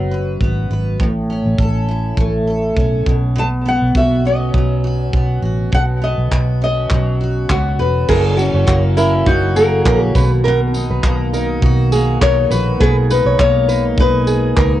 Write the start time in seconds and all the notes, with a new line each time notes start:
Already playing: F#1 F#2 F#3 B3 F#4 B4
0.11 B4
0.41 G#1 B3, kick
0.70 G#1 B4
0.99 A1 A2, kick
1.30 C#4
1.46 A1
1.58 A1 A4, kick
1.88 E4
2.17 A1 A3, kick
2.47 A4
2.76 B1 C#4, kick
3.06 B1 B2, kick
3.35 B2 A5
3.65 B3 F#5
3.82 B1
3.95 B1 F#4 E5, kick
4.25 C#4 D#5
4.54 B1 F#3, kick
4.84 F#4
5.05 C#5
5.13 B1 B3, kick
5.42 A1 F#4
5.72 B1 B2 F#5, kick
6.02 B3 D#5
6.18 B1
6.31 B1 F#4, kick, clap
6.62 C#4 D#5
6.90 B1 F#3, kick, clap
7.21 F#4
7.49 C#2 B3 F#4, kick, clap
7.79 E1 F#4 B4
8.08 F#1 F#2 C#3 F#3 A#3 E4 G#4 A#4, kick, crash
8.37 C#4 F#4, tambourine
8.54 F#1 C#5
8.67 F#1 A#3 F#4, kick, clap
8.97 C#4 E4 A#4, tambourine
9.26 F#1 D#4 F#4, kick
9.56 A#3 G#4 A#4, tambourine
9.85 A#1 C#4 A#4, kick, clap
9.99 G#4
10.15 B1 B2 D#3 F#4 B4, kick, tambourine
10.44 B2 A#4
10.74 D#4, tambourine
10.90 B1 B4
11.03 B1 A#3, kick, clap
11.33 D#4 A#4, tambourine
11.62 B1 F#4, kick
11.92 A#3 G#4, tambourine
12.21 B1 D#4 A#4 C#5, kick, clap
12.50 A#1 F#4 B4, tambourine
12.80 B1 B2 G#3 D#4 G#4 B4, kick
13.10 D#4 B4, tambourine
13.25 B1 C#5
13.39 B1 A#3 C#5, kick, clap
13.69 D#4 B4, tambourine
13.98 B1 G#4 B4, kick
14.27 G#4, tambourine
14.56 C#2 D#4 A#4, kick, clap